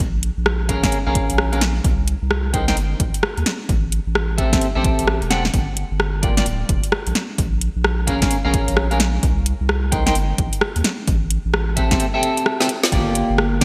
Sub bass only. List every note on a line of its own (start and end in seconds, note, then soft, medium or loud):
0.00 0.31 A#1 loud
0.37 0.88 A#1 medium
1.07 1.22 A#1 medium
1.30 1.81 A#1 loud
1.84 2.16 C2 loud
2.22 2.73 C2 medium
2.77 2.95 G1 medium
3.00 3.10 A#1 loud
3.37 3.44 D#2 loud
3.69 4.00 A1 loud
4.07 4.58 A1 medium
4.76 4.91 A1 medium
4.99 5.21 A1 loud
5.22 5.50 E1 medium
5.54 5.85 G1 loud
5.91 6.42 G1 medium
6.46 6.64 D1 loud
6.69 6.80 F1 loud
7.07 7.13 A#1 loud
7.38 7.69 A#1 loud
7.76 8.27 A#1 medium
8.45 8.60 A#1 medium
8.68 9.19 A#1 loud
9.23 9.54 C2 loud
9.61 10.12 C2 medium
10.15 10.34 G1 loud
10.38 10.49 A#1 loud
10.76 10.82 D#2 loud
11.08 11.39 A1 loud
11.45 11.96 A1 medium
12.92 13.23 G1 loud
13.30 13.64 G1 medium